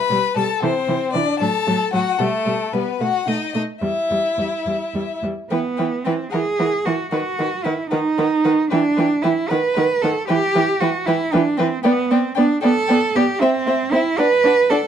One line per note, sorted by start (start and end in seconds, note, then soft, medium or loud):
0.00 0.37 B4 medium
0.00 0.36 B5 loud
0.10 0.18 B2 medium
0.10 0.18 G3 medium
0.36 0.44 B2 medium
0.36 0.44 G3 medium
0.36 0.64 A4 medium
0.36 0.62 A5 medium
0.62 0.70 C3 medium
0.62 0.70 E3 medium
0.62 1.16 C4 medium
0.62 1.13 C5 medium
0.88 0.96 C3 medium
0.88 0.96 E3 medium
1.13 1.22 C3 medium
1.13 1.23 E3 medium
1.13 1.41 D4 medium
1.13 1.39 D5 medium
1.40 1.48 A2 medium
1.40 1.49 F#3 soft
1.40 1.93 A4 medium
1.40 1.92 A5 medium
1.67 1.75 A2 medium
1.67 1.75 F#3 medium
1.93 2.01 A2 medium
1.93 2.01 F#3 soft
1.93 2.20 F#4 medium
1.93 2.20 F#5 medium
2.19 2.28 B2 medium
2.19 2.28 G3 medium
2.19 2.73 A3 medium
2.19 2.75 A4 medium
2.46 2.54 B2 medium
2.46 2.54 G3 soft
2.73 2.81 B2 soft
2.73 2.82 G3 soft
2.73 3.00 B3 medium
2.73 3.03 B4 medium
3.00 3.09 B2 medium
3.00 3.08 A3 soft
3.00 3.27 F#4 medium
3.00 3.29 F#5 medium
3.27 3.35 B2 medium
3.27 3.36 A3 soft
3.27 3.55 D#4 medium
3.27 3.53 D#5 medium
3.54 3.62 B2 soft
3.54 3.63 A3 soft
3.54 3.64 D#4 medium
3.54 3.62 D#5 medium
3.82 3.90 E2 medium
3.82 3.90 G3 soft
3.82 5.21 E4 medium
3.82 5.19 E5 medium
4.10 4.18 E2 soft
4.10 4.19 G3 soft
4.38 4.46 E2 soft
4.38 4.47 G3 soft
4.66 4.74 E2 soft
4.66 4.75 G3 soft
4.94 5.02 E2 soft
4.94 5.03 G3 soft
5.22 5.30 E2 soft
5.22 5.32 G3 soft
5.50 5.59 E3 medium
5.50 6.06 B3 medium
5.50 5.60 B4 medium
5.50 5.58 G5 soft
5.77 5.87 E3 medium
5.77 5.86 B4 soft
5.77 5.85 G5 soft
6.04 6.15 E3 medium
6.04 6.31 C4 medium
6.04 6.13 B4 medium
6.04 6.13 G5 soft
6.31 6.42 E3 medium
6.31 6.87 G#4 medium
6.31 6.40 A#4 medium
6.31 6.39 F#5 medium
6.59 6.67 E3 medium
6.59 6.67 A#4 soft
6.59 6.68 F#5 soft
6.86 6.94 E3 medium
6.86 7.11 F#4 medium
6.86 6.94 A#4 soft
6.86 6.94 F#5 soft
7.11 7.20 D#3 medium
7.11 7.66 F#4 medium
7.11 7.20 B4 medium
7.11 7.19 F#5 medium
7.38 7.47 D#3 medium
7.38 7.48 B4 soft
7.38 7.46 F#5 soft
7.64 7.74 D#3 medium
7.64 7.89 E4 medium
7.64 7.73 B4 medium
7.64 7.73 F#5 soft
7.90 8.00 D#3 medium
7.90 8.69 D#4 medium
7.90 7.99 B4 soft
7.90 7.99 F#5 medium
8.18 8.27 D#3 medium
8.18 8.26 B4 medium
8.18 8.26 F#5 medium
8.44 8.53 D#3 medium
8.44 8.52 B4 medium
8.44 8.53 F#5 soft
8.70 8.80 E3 medium
8.70 9.23 D4 loud
8.70 8.78 B4 medium
8.70 8.79 G5 medium
8.96 9.06 E3 medium
8.96 9.04 B4 medium
8.96 9.07 G5 medium
9.22 9.32 E3 medium
9.22 9.51 E4 medium
9.22 9.30 B4 medium
9.22 9.32 G5 medium
9.48 9.59 D#3 medium
9.48 9.56 B4 medium
9.48 10.03 B4 loud
9.48 9.58 F#5 medium
9.74 9.85 D#3 medium
9.74 9.82 B4 medium
9.74 9.85 F#5 medium
10.02 10.12 D#3 medium
10.02 10.27 A4 medium
10.02 10.10 B4 medium
10.02 10.12 F#5 medium
10.28 10.38 E3 medium
10.28 10.82 G4 loud
10.28 10.36 B4 medium
10.28 10.36 G5 medium
10.54 10.63 E3 medium
10.54 10.62 B4 medium
10.54 10.63 G5 medium
10.80 10.89 E3 medium
10.80 11.07 F#4 loud
10.80 10.89 B4 medium
10.80 10.89 G5 medium
11.06 11.16 E3 medium
11.06 11.34 E4 loud
11.06 11.15 B4 medium
11.06 11.16 G5 medium
11.32 11.42 E3 medium
11.32 11.59 D4 medium
11.32 11.41 B4 medium
11.32 11.40 G5 medium
11.57 11.67 E3 medium
11.57 11.84 C4 medium
11.57 11.67 B4 medium
11.57 11.65 G5 medium
11.83 12.12 B3 loud
11.83 11.93 B3 medium
11.83 11.92 D5 medium
11.83 11.91 G5 medium
12.11 12.19 B3 medium
12.11 12.37 C4 medium
12.11 12.19 D5 medium
12.11 12.19 G5 medium
12.35 12.46 B3 medium
12.35 12.63 D4 medium
12.35 12.44 D5 medium
12.35 12.43 G5 medium
12.61 12.72 B3 medium
12.61 13.17 A4 loud
12.61 12.70 D5 medium
12.61 12.69 G5 medium
12.87 12.97 B3 medium
12.87 12.97 D5 medium
12.87 12.95 G5 medium
13.15 13.24 B3 medium
13.15 13.42 G4 medium
13.15 13.24 D5 medium
13.15 13.24 G5 medium
13.41 13.94 C4 loud
13.41 13.49 C4 medium
13.41 13.49 E5 medium
13.41 13.50 G5 medium
13.67 13.75 C4 medium
13.67 13.76 E5 medium
13.67 13.76 G5 medium
13.92 14.00 C4 medium
13.92 14.20 E4 loud
13.92 14.03 E5 medium
13.92 14.01 G5 medium
14.18 14.27 D4 medium
14.18 14.71 B4 loud
14.18 14.28 D5 medium
14.18 14.26 F#5 medium
14.44 14.52 D4 medium
14.44 14.53 D5 medium
14.44 14.54 F#5 medium
14.70 14.78 D4 medium
14.70 14.87 A4 medium
14.70 14.80 D5 medium
14.70 14.79 F#5 medium